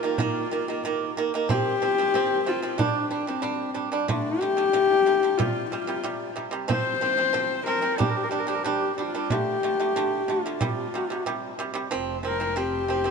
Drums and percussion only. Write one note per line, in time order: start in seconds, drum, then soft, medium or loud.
0.18 frame drum medium
0.51 frame drum soft
0.84 frame drum medium
1.16 frame drum soft
1.49 frame drum medium
1.82 frame drum soft
2.14 frame drum medium
2.79 frame drum medium
3.12 frame drum soft
3.44 frame drum medium
3.76 frame drum soft
4.09 frame drum medium
4.42 frame drum soft
4.74 frame drum medium
5.40 frame drum medium
5.73 frame drum soft
6.04 frame drum medium
6.37 frame drum soft
6.70 frame drum medium
7.03 frame drum soft
7.35 frame drum medium
8.00 frame drum medium
8.33 frame drum soft
8.66 frame drum medium
8.98 frame drum soft
9.30 frame drum medium
9.63 frame drum soft
9.96 frame drum medium
10.28 frame drum medium
10.61 frame drum medium
10.93 frame drum soft
11.26 frame drum medium
11.58 frame drum soft